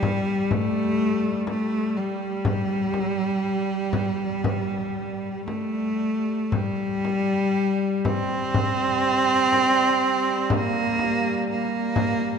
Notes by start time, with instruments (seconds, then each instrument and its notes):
Already playing: cello G3, string section G3
0.03 frame drum
0.51 cello A3, frame drum
1.47 cello A3, frame drum
1.97 cello G3
2.45 frame drum
2.94 frame drum
3.93 frame drum
4.44 frame drum
5.47 cello A3, frame drum
6.51 string section G3, cello G3, frame drum
7.05 frame drum
8.05 cello C4, frame drum
8.54 frame drum
9.53 frame drum
10.50 cello A#3, frame drum
10.99 frame drum
11.50 cello A#3
11.96 frame drum